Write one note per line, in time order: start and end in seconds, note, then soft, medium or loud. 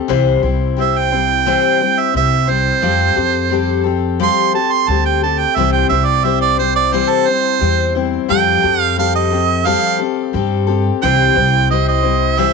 0.08 0.37 C2 loud
0.08 0.43 C3 medium
0.08 0.43 E3 medium
0.08 0.44 G3 loud
0.08 0.43 C4 loud
0.08 0.42 E4 loud
0.08 0.41 C5 loud
0.42 1.54 C2 medium
0.42 0.75 G3 medium
0.42 0.77 C4 soft
0.42 0.77 E4 medium
0.42 0.77 C5 medium
0.77 1.12 G3 medium
0.77 1.12 C4 medium
0.77 1.11 E4 medium
0.77 1.10 C5 medium
0.77 1.00 E5 medium
0.98 2.01 G5 loud
1.11 1.45 G3 soft
1.11 1.46 C4 soft
1.11 1.46 E4 soft
1.11 1.46 C5 soft
1.46 1.81 C3 medium
1.46 1.81 E3 medium
1.46 1.81 G3 loud
1.46 1.81 C4 medium
1.46 1.79 E4 loud
1.46 1.78 C5 loud
1.80 2.12 G3 soft
1.80 2.13 C4 soft
1.80 2.14 E4 soft
1.80 2.15 C5 medium
1.99 2.15 E5 medium
2.13 2.70 C2 medium
2.13 2.48 G3 medium
2.13 2.48 C4 medium
2.13 2.47 E4 medium
2.13 2.46 C5 medium
2.13 2.51 E5 medium
2.47 2.81 G3 soft
2.47 2.82 C4 medium
2.47 2.83 E4 soft
2.47 2.82 C5 medium
2.47 3.83 C5 loud
2.82 3.11 F2 loud
2.82 3.17 F3 medium
2.82 3.17 G3 medium
2.82 3.17 C4 medium
2.82 3.15 G4 medium
2.82 3.14 A4 loud
3.15 4.28 F2 medium
3.15 3.50 C4 soft
3.15 3.51 G4 medium
3.15 3.51 A4 soft
3.50 3.85 G3 medium
3.50 3.85 C4 medium
3.50 3.84 G4 medium
3.50 3.82 A4 medium
3.84 4.19 C4 medium
3.84 4.19 G4 soft
3.84 4.19 A4 medium
4.19 4.54 F3 medium
4.19 4.54 G3 medium
4.19 4.55 C4 medium
4.19 4.54 G4 medium
4.19 4.52 A4 medium
4.19 4.54 C6 loud
4.53 4.88 C4 soft
4.53 4.89 G4 soft
4.53 4.88 A4 soft
4.53 4.74 A5 medium
4.72 4.91 C6 loud
4.88 5.44 D2 medium
4.88 5.23 G3 medium
4.88 5.23 C4 medium
4.88 5.23 G4 medium
4.88 5.21 A4 medium
4.88 5.05 A5 medium
5.06 5.22 G5 medium
5.22 5.57 C4 soft
5.22 5.58 G4 medium
5.22 5.57 A4 medium
5.22 5.40 A5 medium
5.39 5.57 G5 loud
5.55 5.84 C2 medium
5.55 5.91 C3 medium
5.55 5.91 E3 medium
5.55 5.91 G3 medium
5.55 5.91 C4 medium
5.55 5.90 E4 medium
5.55 5.89 C5 loud
5.55 5.72 E5 medium
5.73 5.89 G5 medium
5.89 7.01 C2 medium
5.89 6.23 G3 soft
5.89 6.24 C4 soft
5.89 6.24 E4 soft
5.89 6.25 C5 soft
5.89 6.07 E5 medium
6.06 6.26 D5 medium
6.24 6.59 G3 medium
6.24 6.58 C4 medium
6.24 6.58 E4 medium
6.24 6.56 C5 medium
6.24 6.41 E5 medium
6.41 6.58 D5 medium
6.57 6.92 G3 soft
6.57 6.92 C4 soft
6.57 6.93 E4 soft
6.57 6.93 C5 soft
6.57 6.75 C5 loud
6.76 6.94 D5 loud
6.92 7.27 C3 medium
6.92 7.27 E3 medium
6.92 7.27 G3 medium
6.92 7.28 C4 medium
6.92 7.27 E4 loud
6.92 7.11 C5 medium
6.92 7.26 C5 loud
7.09 7.29 A4 loud
7.27 7.59 G3 soft
7.27 7.60 C4 soft
7.27 7.61 E4 soft
7.27 7.62 C5 medium
7.27 7.94 C5 loud
7.60 8.17 E2 medium
7.60 7.95 G3 medium
7.60 7.95 C4 medium
7.60 7.94 E4 medium
7.60 7.94 C5 medium
7.95 8.28 G3 soft
7.95 8.28 C4 medium
7.95 8.30 E4 medium
7.95 8.30 C5 medium
8.28 8.58 F2 loud
8.28 8.63 F3 medium
8.28 8.64 G3 medium
8.28 8.64 C4 medium
8.28 8.63 G4 medium
8.28 8.61 A4 medium
8.28 8.81 G5 loud
8.63 9.74 F2 medium
8.63 8.96 C4 soft
8.63 8.97 G4 soft
8.63 8.97 A4 soft
8.81 8.96 F5 loud
8.96 9.31 G3 medium
8.96 9.32 C4 medium
8.96 9.31 G4 medium
8.96 9.30 A4 medium
8.96 9.14 F5 medium
9.16 9.67 D#5 loud
9.31 9.64 C4 soft
9.31 9.65 G4 soft
9.31 9.66 A4 medium
9.65 10.00 F3 medium
9.65 10.00 G3 medium
9.65 10.00 C4 medium
9.65 9.99 G4 loud
9.65 9.97 A4 loud
9.65 9.99 F5 loud
9.99 10.33 C4 soft
9.99 10.34 G4 soft
9.99 10.34 A4 medium
10.33 10.89 G2 medium
10.33 10.68 G3 medium
10.33 10.68 C4 medium
10.33 10.67 G4 medium
10.33 10.66 A4 medium
10.67 11.02 C4 soft
10.67 11.02 G4 medium
10.67 11.02 A4 medium
11.02 11.30 C2 loud
11.02 11.36 C3 medium
11.02 11.36 E3 medium
11.02 11.36 G3 medium
11.02 11.36 C4 medium
11.02 11.35 E4 loud
11.02 11.34 C5 medium
11.02 11.69 G5 loud
11.35 12.46 C2 loud
11.35 11.68 G3 soft
11.35 11.70 C4 soft
11.35 11.70 E4 medium
11.35 11.70 C5 soft
11.69 12.04 G3 medium
11.69 12.03 C4 medium
11.69 12.03 E4 medium
11.69 12.01 C5 medium
11.69 11.86 D#5 medium
11.88 12.41 D#5 medium
12.02 12.37 G3 soft
12.02 12.37 C4 soft
12.02 12.38 E4 medium
12.02 12.38 C5 soft
12.37 12.53 C3 medium
12.37 12.53 E3 medium
12.37 12.53 G3 medium
12.37 12.53 C4 loud
12.37 12.53 E4 medium
12.37 12.53 C5 loud
12.37 12.53 E5 loud